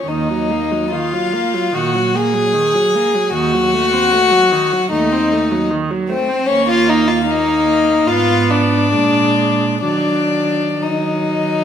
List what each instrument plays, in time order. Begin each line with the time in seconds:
Already playing: violin C#4
0.06 cello D#2, viola D#3, violin D#4 D#5
0.29 viola F#3
0.51 viola A#3
0.71 viola F#3
0.92 viola D#3, violin F4 F5
1.13 viola F#3
1.33 viola A#3
1.54 viola F#3
1.74 cello A#2, viola D#3, violin F#4 F#5
1.95 viola F#3
2.15 viola A#3, violin G#4 G#5
2.34 viola F#3
2.53 viola D#3
2.74 viola F#3
2.95 viola A#3
3.15 viola F#3
3.33 cello D#2, viola D#3, violin F#4 F#5
3.54 viola F#3
3.74 viola A3
3.93 viola C4
4.13 viola A3
4.31 viola F#3
4.52 viola D#3
4.72 viola F#3
4.92 cello D#2, viola A3, violin D#4 D#5
5.12 viola C4
5.32 viola A3
5.51 viola F#3
5.71 viola D#3
5.90 viola F#3
6.09 viola A3, violin C4 C5
6.29 viola C4
6.47 cello D#2, viola A#3, violin C#4 C#5
6.68 violin F4 F5
6.89 violin D#4 D#5
7.08 violin F4 F5
7.26 violin D#4
7.30 viola A#3, violin D#5
8.08 cello G#2, viola B3, violin F4 F5
8.50 violin D4 D5
8.94 cello A#2, viola G#3
9.83 cello D#3, viola F#3, violin D4 D5
10.82 viola F#3, violin D#4 D#5